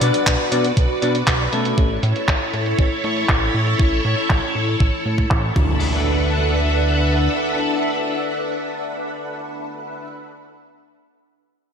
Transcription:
0.00 0.12 B2 medium
0.00 0.49 D4 medium
0.00 1.74 F#4 medium
0.00 0.49 F#4 medium
0.00 1.74 B4 medium
0.00 0.49 B4 medium
0.00 1.74 D5 medium
0.00 0.49 D5 medium
0.00 closed hi-hat medium
0.00 downlifter medium
0.14 closed hi-hat medium
0.27 0.37 B1 medium
0.27 kick loud
0.27 clap loud
0.27 closed hi-hat medium
0.52 0.72 B2 loud
0.52 0.65 D4 medium
0.52 0.65 F#4 medium
0.52 0.65 B4 medium
0.52 0.65 D5 loud
0.52 closed hi-hat medium
0.65 closed hi-hat soft
0.77 0.87 B1 loud
0.77 kick loud
0.77 closed hi-hat medium
1.02 1.23 B2 medium
1.02 1.16 D4 medium
1.02 1.16 F#4 medium
1.02 1.16 B4 medium
1.02 1.16 D5 medium
1.02 closed hi-hat medium
1.15 closed hi-hat medium
1.27 1.48 B1 loud
1.27 kick loud
1.27 clap loud
1.27 closed hi-hat medium
1.52 1.73 B2 medium
1.52 2.00 A3 medium
1.52 2.00 C#4 medium
1.52 2.00 E4 medium
1.52 2.00 A4 medium
1.52 closed hi-hat medium
1.65 closed hi-hat medium
1.78 1.98 A1 medium
1.78 5.52 E4 medium
1.78 5.52 A4 medium
1.78 5.52 C#5 medium
1.78 kick loud
1.78 closed hi-hat medium
2.03 2.13 A2 medium
2.03 closed hi-hat medium
2.16 closed hi-hat soft
2.28 2.39 A1 medium
2.28 kick loud
2.28 clap loud
2.28 closed hi-hat medium
2.53 2.74 A2 loud
2.53 closed hi-hat medium
2.66 closed hi-hat soft
2.79 2.89 A1 medium
2.79 kick loud
2.79 closed hi-hat medium
3.04 3.24 A2 medium
3.04 closed hi-hat medium
3.17 closed hi-hat soft
3.29 3.50 A1 loud
3.29 kick loud
3.29 clap loud
3.29 closed hi-hat medium
3.54 3.75 A2 medium
3.54 closed hi-hat medium
3.67 closed hi-hat medium
3.80 4.00 A1 medium
3.80 kick loud
3.80 closed hi-hat medium
4.05 4.15 A2 medium
4.05 closed hi-hat medium
4.17 closed hi-hat soft
4.30 4.40 A1 medium
4.30 kick loud
4.30 clap loud
4.30 closed hi-hat medium
4.55 4.76 A2 loud
4.55 closed hi-hat medium
4.68 closed hi-hat soft
4.80 4.91 A1 loud
4.80 kick loud
4.80 closed hi-hat medium
5.06 5.26 A2 medium
5.06 closed hi-hat medium
5.18 kick medium
5.18 closed hi-hat soft
5.31 5.51 A1 loud
5.31 kick loud
5.31 clap loud
5.31 closed hi-hat medium
5.56 7.29 D2 medium
5.56 10.06 D4 medium
5.56 10.06 A4 medium
5.56 10.06 B4 medium
5.56 10.06 E5 medium
5.56 10.06 F#5 medium
5.56 kick loud
5.56 crash medium
5.56 impact medium

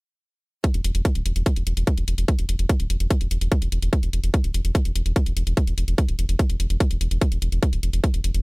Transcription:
0.64 kick loud
0.64 closed hi-hat medium
0.74 0.80 E1 medium
0.74 closed hi-hat medium
0.84 0.90 E1 loud
0.84 closed hi-hat medium
0.95 1.01 E1 medium
0.95 closed hi-hat medium
1.05 kick loud
1.05 closed hi-hat medium
1.15 1.21 D1 medium
1.15 closed hi-hat medium
1.26 1.32 E1 medium
1.26 closed hi-hat medium
1.36 1.42 E1 medium
1.36 closed hi-hat medium
1.46 kick loud
1.46 closed hi-hat medium
1.56 1.62 E1 medium
1.56 closed hi-hat medium
1.67 1.73 E1 loud
1.67 closed hi-hat medium
1.77 1.83 E1 medium
1.77 closed hi-hat medium
1.87 kick loud
1.87 closed hi-hat medium
1.98 2.03 E1 medium
1.98 closed hi-hat medium
2.08 2.14 E1 loud
2.08 closed hi-hat medium
2.18 2.24 E1 medium
2.18 closed hi-hat medium
2.28 kick loud
2.28 closed hi-hat medium
2.39 2.45 E1 medium
2.39 closed hi-hat medium
2.49 2.55 E1 medium
2.49 closed hi-hat medium
2.59 2.65 E1 medium
2.59 closed hi-hat soft
2.69 kick loud
2.69 closed hi-hat medium
2.80 2.86 D1 medium
2.80 closed hi-hat medium
2.90 2.96 E1 loud
2.90 closed hi-hat medium
3.00 3.06 E1 medium
3.00 closed hi-hat soft
3.11 kick loud
3.11 closed hi-hat medium
3.21 3.27 E1 medium
3.21 closed hi-hat medium
3.31 3.37 E1 loud
3.31 closed hi-hat medium
3.41 3.47 E1 medium
3.41 closed hi-hat medium
3.52 kick loud
3.52 closed hi-hat medium
3.62 3.68 E1 medium
3.62 closed hi-hat medium
3.72 3.78 E1 loud
3.72 closed hi-hat medium
3.82 3.88 E1 medium
3.82 closed hi-hat medium
3.93 kick loud
3.93 closed hi-hat medium
4.03 4.09 E1 medium
4.03 closed hi-hat medium
4.13 4.19 E1 medium
4.13 closed hi-hat medium
4.24 4.30 E1 medium
4.24 closed hi-hat soft
4.34 kick loud
4.34 closed hi-hat medium
4.44 4.50 D1 medium
4.44 closed hi-hat soft
4.54 4.60 E1 medium
4.54 closed hi-hat medium
4.65 4.71 E1 medium
4.65 closed hi-hat soft
4.75 kick loud
4.75 closed hi-hat medium
4.85 4.91 E1 medium
4.85 closed hi-hat soft
4.96 5.01 E1 medium
4.96 closed hi-hat medium
5.06 5.12 E1 medium
5.06 closed hi-hat soft
5.16 kick loud
5.16 closed hi-hat medium
5.26 5.32 E1 medium
5.26 closed hi-hat soft
5.37 5.43 E1 loud
5.37 closed hi-hat medium
5.47 5.53 E1 medium
5.47 closed hi-hat soft
5.57 kick loud
5.57 closed hi-hat medium
5.67 5.73 E1 medium
5.67 closed hi-hat soft
5.78 5.84 E1 loud
5.78 closed hi-hat medium
5.88 5.94 E1 medium
5.88 closed hi-hat soft
5.98 kick loud
5.98 closed hi-hat medium
6.08 6.14 D1 medium
6.08 closed hi-hat soft
6.19 6.25 E1 medium
6.19 closed hi-hat medium
6.29 6.35 E1 medium
6.29 closed hi-hat soft
6.39 kick loud
6.39 closed hi-hat medium
6.50 6.56 E1 medium
6.50 closed hi-hat soft
6.60 6.66 E1 loud
6.60 closed hi-hat medium
6.70 6.76 E1 medium
6.70 closed hi-hat soft
6.80 kick loud
6.80 closed hi-hat medium
6.91 6.97 E1 medium
6.91 closed hi-hat soft
7.01 7.07 E1 loud
7.01 closed hi-hat medium
7.11 7.17 E1 medium
7.11 closed hi-hat medium
7.21 kick loud
7.21 closed hi-hat medium
7.32 7.38 E1 medium
7.32 closed hi-hat soft
7.42 7.48 E1 loud
7.42 closed hi-hat medium
7.52 7.58 E1 medium
7.52 closed hi-hat soft
7.63 kick loud
7.63 closed hi-hat medium
7.73 7.79 D1 medium
7.73 closed hi-hat soft
7.83 7.89 E1 medium
7.83 closed hi-hat medium
7.93 7.99 E1 medium
7.93 closed hi-hat soft
8.04 kick loud
8.04 closed hi-hat medium
8.14 8.20 E1 medium
8.14 closed hi-hat soft
8.24 8.30 E1 medium
8.24 closed hi-hat medium
8.34 8.40 E1 medium
8.34 closed hi-hat soft

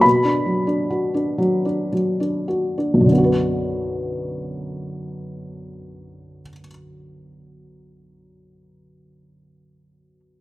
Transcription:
0.01 3.06 B2 medium
0.01 1.88 B5 medium
0.24 0.65 D4 soft
0.46 1.37 F#3 soft
0.67 1.13 D4 soft
0.90 2.46 F#4 soft
1.14 1.64 D4 soft
1.38 1.91 F#3 soft
1.65 2.19 D4 soft
1.92 3.06 F#3 soft
2.20 2.76 D4 soft
2.48 3.07 F#4 soft
2.78 3.08 D4 soft
2.94 6.41 B1 soft
3.01 6.47 F#2 soft
3.06 6.52 D3 soft
3.12 6.58 B3 soft
3.18 6.65 F#4 soft
3.24 6.71 B4 soft

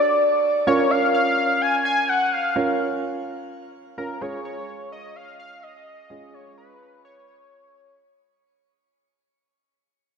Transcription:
0.00 0.63 D4 medium
0.00 0.63 F#4 medium
0.00 0.63 A4 medium
0.00 0.39 D5 medium
0.67 2.52 C#4 medium
0.67 2.52 F4 medium
0.67 2.52 A#4 medium
0.67 0.92 C#5 medium
0.91 1.14 F5 loud
1.14 1.63 F5 loud
1.61 1.84 G#5 loud
1.85 2.10 G#5 loud
2.09 2.34 F#5 loud
2.32 2.80 F5 medium
2.56 3.95 C#4 medium
2.56 3.95 F4 medium
2.56 3.95 A#4 medium
3.98 4.20 C#4 medium
3.98 4.20 F4 soft
3.98 4.21 A#4 medium
3.98 4.23 A#4 medium
4.21 6.06 G#3 medium
4.21 6.06 C#4 medium
4.21 6.06 F4 medium
4.21 6.06 G#4 medium
4.21 4.44 C#5 loud
4.45 4.89 C#5 loud
4.92 5.17 D#5 loud
5.16 5.39 F5 loud
5.39 5.64 F5 loud
5.63 6.35 D#5 loud
6.10 7.95 G#3 medium
6.10 7.95 C#4 medium
6.10 7.95 F4 medium
6.10 7.95 G#4 medium
6.34 6.57 C#5 loud
6.58 7.01 B4 medium
7.05 7.27 C#5 medium
7.28 7.95 C#5 medium

